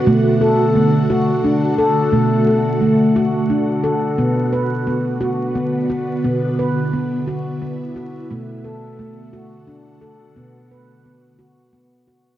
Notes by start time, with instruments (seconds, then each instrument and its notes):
Already playing: ambient pad D3 F#4
0.06 handpan B2 A3, ambient pad A3
0.41 handpan A4
0.75 handpan A3
1.10 handpan F#4
1.44 handpan D4
1.78 handpan A4
2.12 handpan B2 A3
2.47 handpan A4
2.81 handpan A3
3.16 handpan F#4
3.50 handpan D4
3.84 handpan A4
4.18 handpan B2 B3, ambient pad D3 B3
4.53 handpan B4
4.87 handpan B3
5.21 handpan F#4
5.55 handpan B3
5.90 handpan F#4
6.24 handpan B2 B3, ambient pad E4
6.59 handpan B4
6.93 handpan B3
7.28 handpan F#4
7.62 handpan B3
7.96 handpan F#4
8.30 handpan B2 A3, ambient pad D3 A3 F#4
8.64 handpan A4
8.99 handpan A3
9.33 handpan F#4
9.67 handpan D4
10.01 handpan A4
10.36 handpan B2 B3, ambient pad B3
10.71 handpan B4
11.05 handpan B3
11.39 handpan F#4
11.73 handpan B3
12.07 handpan F#4